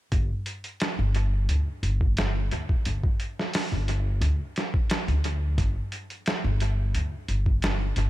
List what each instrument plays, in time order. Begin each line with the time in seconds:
0.12 upright bass G1, kick, closed hi-hat
0.46 closed hi-hat
0.64 closed hi-hat
0.80 snare, closed hi-hat
0.99 upright bass G1
1.15 closed hi-hat
1.49 upright bass D2, closed hi-hat
1.83 upright bass G1, closed hi-hat
2.01 kick
2.17 snare, closed hi-hat
2.51 upright bass D2, closed hi-hat
2.69 kick
2.85 upright bass G1, closed hi-hat
3.04 kick
3.20 closed hi-hat
3.39 snare
3.53 snare, open hi-hat
3.72 upright bass G1
3.88 closed hi-hat
4.21 upright bass D2, closed hi-hat
4.56 snare, closed hi-hat
4.74 kick
4.90 snare, closed hi-hat
5.08 upright bass D2, closed hi-hat
5.24 closed hi-hat
5.58 upright bass G1, kick, closed hi-hat
5.92 closed hi-hat
6.10 closed hi-hat
6.26 snare, closed hi-hat
6.44 upright bass G1
6.60 closed hi-hat
6.95 upright bass D2, closed hi-hat
7.28 upright bass G1, closed hi-hat
7.46 kick
7.62 snare, closed hi-hat
7.96 upright bass G1, closed hi-hat